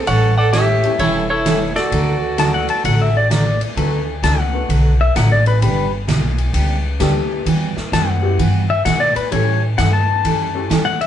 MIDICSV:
0, 0, Header, 1, 9, 480
1, 0, Start_track
1, 0, Key_signature, 2, "major"
1, 0, Tempo, 462250
1, 74, Time_signature, 4, 2, 24, 8
1, 11494, End_track
2, 0, Start_track
2, 0, Title_t, "Pedal steel guitar"
2, 0, Program_c, 0, 26
2, 2487, Note_on_c, 0, 81, 77
2, 2635, Note_off_c, 0, 81, 0
2, 2640, Note_on_c, 0, 78, 86
2, 2792, Note_off_c, 0, 78, 0
2, 2803, Note_on_c, 0, 81, 74
2, 2953, Note_off_c, 0, 81, 0
2, 2963, Note_on_c, 0, 78, 88
2, 3113, Note_off_c, 0, 78, 0
2, 3132, Note_on_c, 0, 76, 73
2, 3277, Note_off_c, 0, 76, 0
2, 3291, Note_on_c, 0, 74, 77
2, 3429, Note_off_c, 0, 74, 0
2, 3441, Note_on_c, 0, 74, 91
2, 3741, Note_off_c, 0, 74, 0
2, 4401, Note_on_c, 0, 81, 84
2, 4564, Note_off_c, 0, 81, 0
2, 4564, Note_on_c, 0, 78, 84
2, 5179, Note_off_c, 0, 78, 0
2, 5201, Note_on_c, 0, 76, 82
2, 5352, Note_off_c, 0, 76, 0
2, 5364, Note_on_c, 0, 78, 78
2, 5514, Note_off_c, 0, 78, 0
2, 5524, Note_on_c, 0, 74, 83
2, 5674, Note_off_c, 0, 74, 0
2, 5684, Note_on_c, 0, 71, 84
2, 5831, Note_off_c, 0, 71, 0
2, 5843, Note_on_c, 0, 71, 95
2, 6142, Note_off_c, 0, 71, 0
2, 8239, Note_on_c, 0, 81, 84
2, 8398, Note_off_c, 0, 81, 0
2, 8398, Note_on_c, 0, 78, 88
2, 9017, Note_off_c, 0, 78, 0
2, 9034, Note_on_c, 0, 76, 89
2, 9188, Note_off_c, 0, 76, 0
2, 9192, Note_on_c, 0, 78, 81
2, 9346, Note_on_c, 0, 74, 89
2, 9348, Note_off_c, 0, 78, 0
2, 9506, Note_off_c, 0, 74, 0
2, 9514, Note_on_c, 0, 71, 80
2, 9670, Note_off_c, 0, 71, 0
2, 9681, Note_on_c, 0, 73, 86
2, 9982, Note_off_c, 0, 73, 0
2, 10155, Note_on_c, 0, 78, 92
2, 10311, Note_off_c, 0, 78, 0
2, 10312, Note_on_c, 0, 81, 106
2, 11245, Note_off_c, 0, 81, 0
2, 11267, Note_on_c, 0, 78, 94
2, 11426, Note_off_c, 0, 78, 0
2, 11433, Note_on_c, 0, 76, 96
2, 11494, Note_off_c, 0, 76, 0
2, 11494, End_track
3, 0, Start_track
3, 0, Title_t, "Electric slide guitar"
3, 0, Program_c, 1, 29
3, 77, Note_on_c, 1, 78, 100
3, 83, Note_on_c, 1, 73, 83
3, 370, Note_off_c, 1, 73, 0
3, 378, Note_off_c, 1, 78, 0
3, 390, Note_on_c, 1, 78, 103
3, 399, Note_on_c, 1, 74, 78
3, 543, Note_off_c, 1, 74, 0
3, 548, Note_on_c, 1, 76, 100
3, 557, Note_on_c, 1, 73, 80
3, 560, Note_off_c, 1, 78, 0
3, 1001, Note_off_c, 1, 73, 0
3, 1037, Note_on_c, 1, 73, 89
3, 1041, Note_on_c, 1, 69, 69
3, 1044, Note_off_c, 1, 76, 0
3, 1329, Note_off_c, 1, 69, 0
3, 1339, Note_off_c, 1, 73, 0
3, 1351, Note_on_c, 1, 73, 92
3, 1359, Note_on_c, 1, 69, 74
3, 1799, Note_off_c, 1, 69, 0
3, 1825, Note_off_c, 1, 73, 0
3, 1826, Note_on_c, 1, 69, 63
3, 1829, Note_on_c, 1, 74, 79
3, 3391, Note_off_c, 1, 69, 0
3, 3392, Note_off_c, 1, 74, 0
3, 11494, End_track
4, 0, Start_track
4, 0, Title_t, "Fiddle"
4, 0, Program_c, 2, 110
4, 77, Note_on_c, 2, 69, 82
4, 366, Note_off_c, 2, 69, 0
4, 388, Note_on_c, 2, 69, 92
4, 542, Note_off_c, 2, 69, 0
4, 547, Note_on_c, 2, 67, 86
4, 996, Note_off_c, 2, 67, 0
4, 1031, Note_on_c, 2, 64, 85
4, 1323, Note_off_c, 2, 64, 0
4, 1353, Note_on_c, 2, 64, 83
4, 1796, Note_off_c, 2, 64, 0
4, 1843, Note_on_c, 2, 66, 77
4, 3399, Note_off_c, 2, 66, 0
4, 11494, End_track
5, 0, Start_track
5, 0, Title_t, "Upright piano"
5, 0, Program_c, 3, 0
5, 870, Note_on_c, 3, 55, 67
5, 874, Note_on_c, 3, 57, 66
5, 874, Note_on_c, 3, 61, 64
5, 878, Note_on_c, 3, 64, 68
5, 879, Note_on_c, 3, 67, 81
5, 1018, Note_off_c, 3, 55, 0
5, 1020, Note_off_c, 3, 57, 0
5, 1020, Note_off_c, 3, 61, 0
5, 1022, Note_off_c, 3, 64, 0
5, 1022, Note_off_c, 3, 67, 0
5, 2473, Note_on_c, 3, 54, 59
5, 2474, Note_on_c, 3, 57, 59
5, 2476, Note_on_c, 3, 62, 57
5, 2478, Note_on_c, 3, 66, 55
5, 2483, Note_on_c, 3, 69, 68
5, 2754, Note_off_c, 3, 54, 0
5, 2755, Note_off_c, 3, 57, 0
5, 2756, Note_off_c, 3, 62, 0
5, 2757, Note_off_c, 3, 66, 0
5, 2759, Note_off_c, 3, 69, 0
5, 3910, Note_on_c, 3, 57, 69
5, 3914, Note_on_c, 3, 59, 63
5, 3917, Note_on_c, 3, 62, 69
5, 3920, Note_on_c, 3, 66, 65
5, 3920, Note_on_c, 3, 69, 82
5, 4193, Note_off_c, 3, 57, 0
5, 4195, Note_off_c, 3, 59, 0
5, 4197, Note_off_c, 3, 62, 0
5, 4198, Note_off_c, 3, 69, 0
5, 4199, Note_off_c, 3, 66, 0
5, 4706, Note_on_c, 3, 57, 66
5, 4710, Note_on_c, 3, 59, 59
5, 4710, Note_on_c, 3, 62, 61
5, 4715, Note_on_c, 3, 66, 60
5, 4715, Note_on_c, 3, 71, 73
5, 4856, Note_off_c, 3, 57, 0
5, 4858, Note_off_c, 3, 59, 0
5, 4858, Note_off_c, 3, 62, 0
5, 4860, Note_off_c, 3, 66, 0
5, 4861, Note_off_c, 3, 71, 0
5, 5832, Note_on_c, 3, 59, 58
5, 5834, Note_on_c, 3, 55, 59
5, 5837, Note_on_c, 3, 62, 56
5, 5837, Note_on_c, 3, 67, 56
5, 5841, Note_on_c, 3, 71, 64
5, 6115, Note_off_c, 3, 59, 0
5, 6116, Note_off_c, 3, 55, 0
5, 6117, Note_off_c, 3, 62, 0
5, 6117, Note_off_c, 3, 67, 0
5, 6119, Note_off_c, 3, 71, 0
5, 7266, Note_on_c, 3, 55, 70
5, 7268, Note_on_c, 3, 59, 62
5, 7271, Note_on_c, 3, 62, 66
5, 7273, Note_on_c, 3, 67, 66
5, 7274, Note_on_c, 3, 69, 77
5, 7750, Note_off_c, 3, 55, 0
5, 7751, Note_off_c, 3, 59, 0
5, 7752, Note_off_c, 3, 62, 0
5, 7753, Note_off_c, 3, 67, 0
5, 7754, Note_off_c, 3, 69, 0
5, 8541, Note_on_c, 3, 55, 77
5, 8545, Note_on_c, 3, 59, 64
5, 8546, Note_on_c, 3, 66, 67
5, 8547, Note_on_c, 3, 64, 66
5, 8552, Note_on_c, 3, 67, 80
5, 8694, Note_off_c, 3, 55, 0
5, 8696, Note_off_c, 3, 59, 0
5, 8697, Note_off_c, 3, 64, 0
5, 8697, Note_off_c, 3, 66, 0
5, 8700, Note_off_c, 3, 67, 0
5, 9666, Note_on_c, 3, 57, 64
5, 9670, Note_on_c, 3, 61, 61
5, 9671, Note_on_c, 3, 64, 60
5, 9674, Note_on_c, 3, 67, 60
5, 9678, Note_on_c, 3, 69, 73
5, 9953, Note_off_c, 3, 57, 0
5, 9955, Note_off_c, 3, 61, 0
5, 9955, Note_off_c, 3, 64, 0
5, 9957, Note_off_c, 3, 67, 0
5, 9959, Note_off_c, 3, 69, 0
5, 10950, Note_on_c, 3, 57, 60
5, 10951, Note_on_c, 3, 61, 57
5, 10953, Note_on_c, 3, 64, 53
5, 10956, Note_on_c, 3, 67, 58
5, 10960, Note_on_c, 3, 69, 67
5, 11099, Note_off_c, 3, 57, 0
5, 11100, Note_off_c, 3, 61, 0
5, 11101, Note_off_c, 3, 64, 0
5, 11102, Note_off_c, 3, 67, 0
5, 11105, Note_off_c, 3, 69, 0
5, 11494, End_track
6, 0, Start_track
6, 0, Title_t, "Steel-string acoustic guitar"
6, 0, Program_c, 4, 25
6, 71, Note_on_c, 4, 52, 59
6, 74, Note_on_c, 4, 55, 63
6, 76, Note_on_c, 4, 61, 63
6, 79, Note_on_c, 4, 69, 58
6, 80, Note_on_c, 4, 64, 62
6, 303, Note_off_c, 4, 52, 0
6, 305, Note_off_c, 4, 55, 0
6, 305, Note_off_c, 4, 61, 0
6, 307, Note_off_c, 4, 64, 0
6, 307, Note_off_c, 4, 69, 0
6, 553, Note_on_c, 4, 52, 64
6, 556, Note_on_c, 4, 55, 72
6, 560, Note_on_c, 4, 61, 65
6, 560, Note_on_c, 4, 69, 79
6, 561, Note_on_c, 4, 64, 74
6, 675, Note_off_c, 4, 52, 0
6, 677, Note_off_c, 4, 55, 0
6, 679, Note_off_c, 4, 61, 0
6, 679, Note_off_c, 4, 64, 0
6, 679, Note_off_c, 4, 69, 0
6, 1037, Note_on_c, 4, 52, 63
6, 1041, Note_on_c, 4, 55, 57
6, 1043, Note_on_c, 4, 61, 64
6, 1045, Note_on_c, 4, 64, 67
6, 1047, Note_on_c, 4, 69, 67
6, 1265, Note_off_c, 4, 52, 0
6, 1267, Note_off_c, 4, 55, 0
6, 1269, Note_off_c, 4, 61, 0
6, 1269, Note_off_c, 4, 64, 0
6, 1270, Note_off_c, 4, 69, 0
6, 1513, Note_on_c, 4, 52, 77
6, 1514, Note_on_c, 4, 55, 78
6, 1517, Note_on_c, 4, 61, 78
6, 1519, Note_on_c, 4, 64, 75
6, 1522, Note_on_c, 4, 69, 79
6, 1635, Note_off_c, 4, 52, 0
6, 1635, Note_off_c, 4, 55, 0
6, 1637, Note_off_c, 4, 61, 0
6, 1638, Note_off_c, 4, 64, 0
6, 1639, Note_off_c, 4, 69, 0
6, 1991, Note_on_c, 4, 50, 58
6, 1991, Note_on_c, 4, 54, 56
6, 1994, Note_on_c, 4, 57, 66
6, 2001, Note_on_c, 4, 66, 66
6, 2002, Note_on_c, 4, 62, 71
6, 2222, Note_off_c, 4, 54, 0
6, 2223, Note_off_c, 4, 50, 0
6, 2224, Note_off_c, 4, 57, 0
6, 2228, Note_off_c, 4, 62, 0
6, 2228, Note_off_c, 4, 66, 0
6, 2466, Note_on_c, 4, 50, 65
6, 2468, Note_on_c, 4, 54, 65
6, 2470, Note_on_c, 4, 57, 65
6, 2472, Note_on_c, 4, 62, 78
6, 2473, Note_on_c, 4, 66, 76
6, 2591, Note_off_c, 4, 50, 0
6, 2592, Note_off_c, 4, 54, 0
6, 2593, Note_off_c, 4, 57, 0
6, 2594, Note_off_c, 4, 62, 0
6, 2595, Note_off_c, 4, 66, 0
6, 2944, Note_on_c, 4, 50, 61
6, 2950, Note_on_c, 4, 54, 56
6, 2951, Note_on_c, 4, 57, 62
6, 2953, Note_on_c, 4, 62, 61
6, 2957, Note_on_c, 4, 66, 65
6, 3179, Note_off_c, 4, 50, 0
6, 3182, Note_off_c, 4, 54, 0
6, 3182, Note_off_c, 4, 57, 0
6, 3183, Note_off_c, 4, 62, 0
6, 3185, Note_off_c, 4, 66, 0
6, 3426, Note_on_c, 4, 50, 67
6, 3430, Note_on_c, 4, 57, 83
6, 3431, Note_on_c, 4, 54, 75
6, 3435, Note_on_c, 4, 66, 77
6, 3436, Note_on_c, 4, 62, 73
6, 3552, Note_off_c, 4, 50, 0
6, 3553, Note_off_c, 4, 57, 0
6, 3554, Note_off_c, 4, 54, 0
6, 3556, Note_off_c, 4, 62, 0
6, 3556, Note_off_c, 4, 66, 0
6, 3904, Note_on_c, 4, 50, 59
6, 3907, Note_on_c, 4, 57, 63
6, 3910, Note_on_c, 4, 54, 56
6, 3912, Note_on_c, 4, 66, 62
6, 3913, Note_on_c, 4, 62, 68
6, 3913, Note_on_c, 4, 71, 67
6, 4139, Note_off_c, 4, 50, 0
6, 4141, Note_off_c, 4, 57, 0
6, 4142, Note_off_c, 4, 54, 0
6, 4143, Note_off_c, 4, 62, 0
6, 4143, Note_off_c, 4, 66, 0
6, 4143, Note_off_c, 4, 71, 0
6, 4390, Note_on_c, 4, 50, 65
6, 4393, Note_on_c, 4, 54, 72
6, 4395, Note_on_c, 4, 57, 71
6, 4397, Note_on_c, 4, 62, 78
6, 4399, Note_on_c, 4, 66, 76
6, 4400, Note_on_c, 4, 71, 83
6, 4514, Note_off_c, 4, 50, 0
6, 4515, Note_off_c, 4, 54, 0
6, 4516, Note_off_c, 4, 57, 0
6, 4517, Note_off_c, 4, 62, 0
6, 4518, Note_off_c, 4, 66, 0
6, 4518, Note_off_c, 4, 71, 0
6, 4872, Note_on_c, 4, 50, 61
6, 4874, Note_on_c, 4, 57, 55
6, 4875, Note_on_c, 4, 54, 59
6, 4878, Note_on_c, 4, 62, 63
6, 4879, Note_on_c, 4, 66, 59
6, 4881, Note_on_c, 4, 71, 66
6, 5103, Note_off_c, 4, 50, 0
6, 5104, Note_off_c, 4, 57, 0
6, 5105, Note_off_c, 4, 54, 0
6, 5106, Note_off_c, 4, 62, 0
6, 5107, Note_off_c, 4, 66, 0
6, 5107, Note_off_c, 4, 71, 0
6, 5354, Note_on_c, 4, 50, 73
6, 5356, Note_on_c, 4, 54, 69
6, 5357, Note_on_c, 4, 57, 76
6, 5359, Note_on_c, 4, 62, 75
6, 5360, Note_on_c, 4, 66, 80
6, 5360, Note_on_c, 4, 71, 82
6, 5475, Note_off_c, 4, 50, 0
6, 5477, Note_off_c, 4, 54, 0
6, 5477, Note_off_c, 4, 57, 0
6, 5478, Note_off_c, 4, 62, 0
6, 5478, Note_off_c, 4, 66, 0
6, 5478, Note_off_c, 4, 71, 0
6, 5832, Note_on_c, 4, 55, 65
6, 5833, Note_on_c, 4, 50, 60
6, 5838, Note_on_c, 4, 62, 62
6, 5840, Note_on_c, 4, 59, 64
6, 5842, Note_on_c, 4, 67, 64
6, 6063, Note_off_c, 4, 55, 0
6, 6064, Note_off_c, 4, 50, 0
6, 6067, Note_off_c, 4, 62, 0
6, 6068, Note_off_c, 4, 59, 0
6, 6068, Note_off_c, 4, 67, 0
6, 6306, Note_on_c, 4, 50, 68
6, 6310, Note_on_c, 4, 55, 71
6, 6315, Note_on_c, 4, 59, 74
6, 6315, Note_on_c, 4, 62, 70
6, 6317, Note_on_c, 4, 67, 70
6, 6432, Note_off_c, 4, 50, 0
6, 6434, Note_off_c, 4, 55, 0
6, 6436, Note_off_c, 4, 59, 0
6, 6436, Note_off_c, 4, 62, 0
6, 6438, Note_off_c, 4, 67, 0
6, 6780, Note_on_c, 4, 55, 64
6, 6781, Note_on_c, 4, 50, 52
6, 6787, Note_on_c, 4, 59, 58
6, 6790, Note_on_c, 4, 62, 62
6, 6792, Note_on_c, 4, 67, 64
6, 7018, Note_off_c, 4, 50, 0
6, 7018, Note_off_c, 4, 55, 0
6, 7021, Note_off_c, 4, 59, 0
6, 7023, Note_off_c, 4, 62, 0
6, 7023, Note_off_c, 4, 67, 0
6, 7271, Note_on_c, 4, 50, 79
6, 7272, Note_on_c, 4, 55, 75
6, 7276, Note_on_c, 4, 59, 73
6, 7278, Note_on_c, 4, 67, 77
6, 7279, Note_on_c, 4, 62, 84
6, 7395, Note_off_c, 4, 50, 0
6, 7395, Note_off_c, 4, 55, 0
6, 7397, Note_off_c, 4, 59, 0
6, 7398, Note_off_c, 4, 62, 0
6, 7398, Note_off_c, 4, 67, 0
6, 7750, Note_on_c, 4, 52, 64
6, 7751, Note_on_c, 4, 55, 66
6, 7756, Note_on_c, 4, 59, 63
6, 7757, Note_on_c, 4, 66, 64
6, 7983, Note_off_c, 4, 52, 0
6, 7983, Note_off_c, 4, 55, 0
6, 7986, Note_off_c, 4, 59, 0
6, 7986, Note_off_c, 4, 66, 0
6, 8233, Note_on_c, 4, 52, 71
6, 8235, Note_on_c, 4, 55, 77
6, 8236, Note_on_c, 4, 59, 73
6, 8238, Note_on_c, 4, 66, 77
6, 8356, Note_off_c, 4, 52, 0
6, 8357, Note_off_c, 4, 55, 0
6, 8357, Note_off_c, 4, 59, 0
6, 8358, Note_off_c, 4, 66, 0
6, 8710, Note_on_c, 4, 52, 61
6, 8713, Note_on_c, 4, 55, 58
6, 8718, Note_on_c, 4, 59, 64
6, 8720, Note_on_c, 4, 66, 69
6, 8943, Note_off_c, 4, 52, 0
6, 8945, Note_off_c, 4, 55, 0
6, 8947, Note_off_c, 4, 59, 0
6, 8948, Note_off_c, 4, 66, 0
6, 9190, Note_on_c, 4, 52, 70
6, 9196, Note_on_c, 4, 55, 76
6, 9199, Note_on_c, 4, 59, 75
6, 9201, Note_on_c, 4, 66, 78
6, 9315, Note_off_c, 4, 52, 0
6, 9317, Note_off_c, 4, 55, 0
6, 9319, Note_off_c, 4, 59, 0
6, 9320, Note_off_c, 4, 66, 0
6, 9671, Note_on_c, 4, 52, 59
6, 9673, Note_on_c, 4, 61, 63
6, 9675, Note_on_c, 4, 55, 62
6, 9675, Note_on_c, 4, 64, 64
6, 9677, Note_on_c, 4, 69, 66
6, 9904, Note_off_c, 4, 52, 0
6, 9905, Note_off_c, 4, 61, 0
6, 9906, Note_off_c, 4, 55, 0
6, 9906, Note_off_c, 4, 64, 0
6, 9907, Note_off_c, 4, 69, 0
6, 10147, Note_on_c, 4, 52, 65
6, 10152, Note_on_c, 4, 55, 75
6, 10156, Note_on_c, 4, 69, 74
6, 10157, Note_on_c, 4, 61, 76
6, 10157, Note_on_c, 4, 64, 79
6, 10273, Note_off_c, 4, 52, 0
6, 10276, Note_off_c, 4, 55, 0
6, 10278, Note_off_c, 4, 61, 0
6, 10278, Note_off_c, 4, 64, 0
6, 10278, Note_off_c, 4, 69, 0
6, 10633, Note_on_c, 4, 52, 57
6, 10633, Note_on_c, 4, 55, 60
6, 10635, Note_on_c, 4, 61, 58
6, 10638, Note_on_c, 4, 64, 62
6, 10639, Note_on_c, 4, 69, 59
6, 10865, Note_off_c, 4, 52, 0
6, 10865, Note_off_c, 4, 55, 0
6, 10866, Note_off_c, 4, 61, 0
6, 10868, Note_off_c, 4, 64, 0
6, 10868, Note_off_c, 4, 69, 0
6, 11106, Note_on_c, 4, 52, 70
6, 11109, Note_on_c, 4, 55, 81
6, 11111, Note_on_c, 4, 61, 79
6, 11112, Note_on_c, 4, 69, 84
6, 11116, Note_on_c, 4, 64, 76
6, 11233, Note_off_c, 4, 52, 0
6, 11235, Note_off_c, 4, 55, 0
6, 11236, Note_off_c, 4, 61, 0
6, 11236, Note_off_c, 4, 69, 0
6, 11238, Note_off_c, 4, 64, 0
6, 11494, End_track
7, 0, Start_track
7, 0, Title_t, "Upright bass"
7, 0, Program_c, 5, 32
7, 77, Note_on_c, 5, 33, 92
7, 843, Note_off_c, 5, 33, 0
7, 1027, Note_on_c, 5, 28, 86
7, 1797, Note_off_c, 5, 28, 0
7, 1990, Note_on_c, 5, 38, 88
7, 2759, Note_off_c, 5, 38, 0
7, 2951, Note_on_c, 5, 33, 81
7, 3719, Note_off_c, 5, 33, 0
7, 3903, Note_on_c, 5, 38, 84
7, 4373, Note_off_c, 5, 38, 0
7, 4386, Note_on_c, 5, 37, 92
7, 4855, Note_off_c, 5, 37, 0
7, 4869, Note_on_c, 5, 35, 84
7, 5337, Note_off_c, 5, 35, 0
7, 5352, Note_on_c, 5, 33, 90
7, 5818, Note_off_c, 5, 33, 0
7, 5831, Note_on_c, 5, 31, 88
7, 6298, Note_off_c, 5, 31, 0
7, 6316, Note_on_c, 5, 35, 90
7, 6780, Note_off_c, 5, 35, 0
7, 6788, Note_on_c, 5, 37, 91
7, 7257, Note_off_c, 5, 37, 0
7, 7267, Note_on_c, 5, 38, 91
7, 7736, Note_off_c, 5, 38, 0
7, 7745, Note_on_c, 5, 40, 85
7, 8041, Note_off_c, 5, 40, 0
7, 8226, Note_on_c, 5, 42, 102
7, 8696, Note_off_c, 5, 42, 0
7, 8709, Note_on_c, 5, 43, 87
7, 9178, Note_off_c, 5, 43, 0
7, 9193, Note_on_c, 5, 47, 88
7, 9485, Note_off_c, 5, 47, 0
7, 9680, Note_on_c, 5, 45, 84
7, 10144, Note_off_c, 5, 45, 0
7, 10159, Note_on_c, 5, 43, 87
7, 10623, Note_off_c, 5, 43, 0
7, 10637, Note_on_c, 5, 42, 82
7, 11102, Note_off_c, 5, 42, 0
7, 11114, Note_on_c, 5, 40, 90
7, 11494, Note_off_c, 5, 40, 0
7, 11494, End_track
8, 0, Start_track
8, 0, Title_t, "Muted upright bass strokes"
8, 8061, Note_on_c, 9, 29, 42
8, 8165, Note_off_c, 9, 29, 0
8, 9511, Note_on_c, 9, 29, 39
8, 9615, Note_off_c, 9, 29, 0
8, 11494, End_track
9, 0, Start_track
9, 0, Title_t, "Drums"
9, 74, Note_on_c, 9, 51, 66
9, 178, Note_off_c, 9, 51, 0
9, 553, Note_on_c, 9, 38, 74
9, 553, Note_on_c, 9, 44, 63
9, 553, Note_on_c, 9, 51, 67
9, 657, Note_off_c, 9, 38, 0
9, 657, Note_off_c, 9, 44, 0
9, 657, Note_off_c, 9, 51, 0
9, 867, Note_on_c, 9, 51, 45
9, 971, Note_off_c, 9, 51, 0
9, 1031, Note_on_c, 9, 51, 63
9, 1135, Note_off_c, 9, 51, 0
9, 1514, Note_on_c, 9, 38, 71
9, 1514, Note_on_c, 9, 44, 57
9, 1514, Note_on_c, 9, 51, 71
9, 1618, Note_off_c, 9, 38, 0
9, 1618, Note_off_c, 9, 44, 0
9, 1618, Note_off_c, 9, 51, 0
9, 1829, Note_on_c, 9, 38, 56
9, 1829, Note_on_c, 9, 51, 49
9, 1933, Note_off_c, 9, 38, 0
9, 1933, Note_off_c, 9, 51, 0
9, 1996, Note_on_c, 9, 51, 66
9, 2100, Note_off_c, 9, 51, 0
9, 2473, Note_on_c, 9, 38, 70
9, 2473, Note_on_c, 9, 44, 62
9, 2473, Note_on_c, 9, 51, 74
9, 2577, Note_off_c, 9, 38, 0
9, 2577, Note_off_c, 9, 44, 0
9, 2577, Note_off_c, 9, 51, 0
9, 2789, Note_on_c, 9, 51, 48
9, 2893, Note_off_c, 9, 51, 0
9, 2956, Note_on_c, 9, 51, 70
9, 3060, Note_off_c, 9, 51, 0
9, 3438, Note_on_c, 9, 38, 72
9, 3438, Note_on_c, 9, 44, 65
9, 3438, Note_on_c, 9, 51, 72
9, 3542, Note_off_c, 9, 38, 0
9, 3542, Note_off_c, 9, 44, 0
9, 3542, Note_off_c, 9, 51, 0
9, 3748, Note_on_c, 9, 51, 48
9, 3852, Note_off_c, 9, 51, 0
9, 3917, Note_on_c, 9, 51, 63
9, 4021, Note_off_c, 9, 51, 0
9, 4396, Note_on_c, 9, 38, 72
9, 4396, Note_on_c, 9, 44, 59
9, 4396, Note_on_c, 9, 51, 71
9, 4500, Note_off_c, 9, 38, 0
9, 4500, Note_off_c, 9, 44, 0
9, 4500, Note_off_c, 9, 51, 0
9, 4877, Note_on_c, 9, 51, 63
9, 4981, Note_off_c, 9, 51, 0
9, 5357, Note_on_c, 9, 38, 67
9, 5357, Note_on_c, 9, 44, 62
9, 5357, Note_on_c, 9, 51, 72
9, 5461, Note_off_c, 9, 38, 0
9, 5461, Note_off_c, 9, 44, 0
9, 5461, Note_off_c, 9, 51, 0
9, 5671, Note_on_c, 9, 51, 48
9, 5775, Note_off_c, 9, 51, 0
9, 5838, Note_on_c, 9, 51, 64
9, 5942, Note_off_c, 9, 51, 0
9, 6318, Note_on_c, 9, 38, 75
9, 6318, Note_on_c, 9, 44, 63
9, 6318, Note_on_c, 9, 51, 71
9, 6422, Note_off_c, 9, 38, 0
9, 6422, Note_off_c, 9, 44, 0
9, 6422, Note_off_c, 9, 51, 0
9, 6628, Note_on_c, 9, 51, 44
9, 6732, Note_off_c, 9, 51, 0
9, 6791, Note_on_c, 9, 51, 74
9, 6895, Note_off_c, 9, 51, 0
9, 7270, Note_on_c, 9, 38, 76
9, 7270, Note_on_c, 9, 44, 57
9, 7270, Note_on_c, 9, 51, 69
9, 7374, Note_off_c, 9, 38, 0
9, 7374, Note_off_c, 9, 44, 0
9, 7374, Note_off_c, 9, 51, 0
9, 7751, Note_on_c, 9, 51, 67
9, 7854, Note_off_c, 9, 51, 0
9, 8066, Note_on_c, 9, 38, 46
9, 8170, Note_off_c, 9, 38, 0
9, 8237, Note_on_c, 9, 38, 79
9, 8237, Note_on_c, 9, 44, 65
9, 8237, Note_on_c, 9, 51, 65
9, 8341, Note_off_c, 9, 38, 0
9, 8341, Note_off_c, 9, 44, 0
9, 8341, Note_off_c, 9, 51, 0
9, 8715, Note_on_c, 9, 51, 64
9, 8819, Note_off_c, 9, 51, 0
9, 9195, Note_on_c, 9, 38, 74
9, 9195, Note_on_c, 9, 44, 61
9, 9195, Note_on_c, 9, 51, 73
9, 9299, Note_off_c, 9, 38, 0
9, 9299, Note_off_c, 9, 44, 0
9, 9299, Note_off_c, 9, 51, 0
9, 9512, Note_on_c, 9, 51, 53
9, 9616, Note_off_c, 9, 51, 0
9, 9676, Note_on_c, 9, 51, 66
9, 9780, Note_off_c, 9, 51, 0
9, 10159, Note_on_c, 9, 38, 74
9, 10159, Note_on_c, 9, 44, 56
9, 10159, Note_on_c, 9, 51, 69
9, 10263, Note_off_c, 9, 38, 0
9, 10263, Note_off_c, 9, 44, 0
9, 10263, Note_off_c, 9, 51, 0
9, 10641, Note_on_c, 9, 51, 66
9, 10745, Note_off_c, 9, 51, 0
9, 11121, Note_on_c, 9, 38, 73
9, 11121, Note_on_c, 9, 44, 64
9, 11121, Note_on_c, 9, 51, 66
9, 11225, Note_off_c, 9, 38, 0
9, 11225, Note_off_c, 9, 44, 0
9, 11225, Note_off_c, 9, 51, 0
9, 11435, Note_on_c, 9, 51, 49
9, 11494, Note_off_c, 9, 51, 0
9, 11494, End_track
0, 0, End_of_file